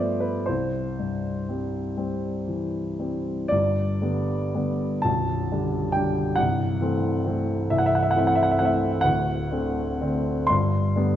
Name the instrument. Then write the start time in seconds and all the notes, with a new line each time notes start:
grand piano
Already playing: G2 F3 A3 B3 C5 D5 E5
0.20 B4
0.46 C2 C5
0.99 G2
1.49 G3 C4
1.97 G3 C4
2.48 E3
2.99 G3 C4
3.48 G1 G2 D5
4.02 D3 G3 B3
4.55 D3 G3 B3
5.02 B0 B1 A5
5.52 D3 G3 D4
5.92 D3 G3 D4 G5
6.36 C1 C2 F#5
6.81 E3 A3 C4
7.26 E3 A3 C4
7.70 C1 C2 E5
7.78 F#5
7.86 E5
7.95 F#5
8.03 E5
8.11 F#5
8.16 E3 A3 C4 E5
8.27 F#5
8.35 E5
8.43 F#5
8.51 E5
8.59 E3 A3 C4 F#5
8.65 E5
9.01 D1 D2 F#5
9.51 D3 A3 C4
10.01 D3 A3 C4
10.47 G1 G2 C6
10.96 D3 G3 B3